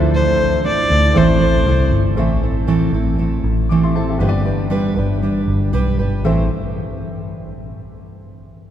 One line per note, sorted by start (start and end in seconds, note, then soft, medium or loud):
0.00 0.35 D2 loud
0.00 0.65 D3 medium
0.00 0.65 F3 medium
0.00 0.64 A3 medium
0.00 0.64 D4 medium
0.00 1.13 D4 medium
0.00 0.66 E4 medium
0.00 1.13 F4 medium
0.00 0.66 A4 medium
0.00 1.14 A4 medium
0.00 1.15 E5 medium
0.15 0.62 C5 loud
0.64 0.90 A3 medium
0.64 0.90 D4 medium
0.64 0.90 E4 medium
0.64 0.90 A4 medium
0.64 1.19 D5 loud
0.90 1.14 D2 loud
0.90 1.15 A3 soft
0.90 1.15 D4 medium
0.90 1.15 E4 medium
0.90 1.16 A4 medium
1.13 1.39 A1 loud
1.13 1.66 A2 medium
1.13 2.17 E3 medium
1.13 1.66 A3 medium
1.13 2.13 C4 medium
1.13 1.67 C4 medium
1.13 2.14 E4 medium
1.13 1.68 E4 medium
1.13 2.15 A4 medium
1.13 1.69 A4 loud
1.13 2.16 E5 medium
1.17 1.93 C5 loud
1.41 1.65 A1 medium
1.66 1.90 C2 medium
1.66 2.17 A3 medium
1.66 2.17 C4 medium
1.66 2.17 E4 medium
1.66 2.18 A4 medium
1.91 2.15 G1 loud
2.15 2.89 A1 medium
2.15 2.42 A2 medium
2.15 2.43 E3 medium
2.15 2.43 A3 medium
2.15 4.16 C4 medium
2.15 2.42 C4 medium
2.15 2.42 E4 medium
2.15 3.66 A4 medium
2.15 2.42 A4 medium
2.15 3.68 E5 medium
2.43 2.67 A3 soft
2.43 2.67 C4 soft
2.43 2.67 E4 soft
2.43 2.67 A4 medium
2.67 2.93 A2 medium
2.67 2.93 E3 medium
2.67 2.93 A3 medium
2.67 2.94 C4 medium
2.67 2.93 E4 medium
2.67 2.93 A4 medium
2.92 3.40 A1 medium
2.92 3.17 A3 soft
2.92 3.18 C4 soft
2.92 3.18 E4 medium
2.92 3.19 A4 medium
3.18 3.69 A3 medium
3.18 3.70 C4 medium
3.18 3.70 E4 medium
3.18 3.70 A4 medium
3.44 4.16 A1 medium
3.69 3.95 A2 medium
3.69 3.96 E3 medium
3.69 3.96 A3 medium
3.69 3.96 C4 medium
3.69 3.95 E4 medium
3.69 3.95 A4 medium
3.69 3.83 D6 medium
3.83 3.95 E5 medium
3.83 3.94 C6 medium
3.95 4.20 A3 medium
3.95 4.20 C4 medium
3.95 4.20 E4 medium
3.95 4.20 A4 medium
3.95 4.09 C5 medium
3.95 4.09 A5 medium
4.09 4.19 G4 soft
4.09 4.33 E5 medium
4.19 4.93 G1 loud
4.19 4.46 G3 medium
4.19 6.19 B3 medium
4.19 4.46 D4 medium
4.19 4.45 G4 medium
4.19 6.20 G4 medium
4.19 4.44 B4 loud
4.19 4.28 C5 medium
4.29 6.24 D5 medium
4.45 4.69 D4 medium
4.45 4.70 G4 medium
4.45 4.70 B4 medium
4.70 4.96 G3 medium
4.70 4.96 D4 medium
4.70 4.97 G4 loud
4.70 4.95 B4 loud
4.96 5.44 G1 medium
4.96 5.22 D4 medium
4.96 5.22 G4 medium
4.96 5.22 B4 medium
5.22 5.72 G3 medium
5.22 5.72 D4 medium
5.22 5.72 G4 medium
5.22 5.73 B4 medium
5.48 5.71 G1 medium
5.73 5.97 B1 medium
5.73 5.99 G3 loud
5.73 5.99 D4 medium
5.73 5.98 G4 loud
5.73 5.98 B4 loud
5.99 6.22 G1 loud
5.99 6.25 D4 medium
5.99 6.25 G4 medium
5.99 6.24 B4 medium
6.24 6.48 A1 medium
6.24 6.45 A2 medium
6.24 6.45 E3 medium
6.24 6.45 A3 medium
6.24 6.48 C4 medium
6.24 6.46 C4 medium
6.24 6.46 E4 medium
6.24 6.48 A4 medium
6.24 6.46 C5 medium
6.24 6.48 E5 medium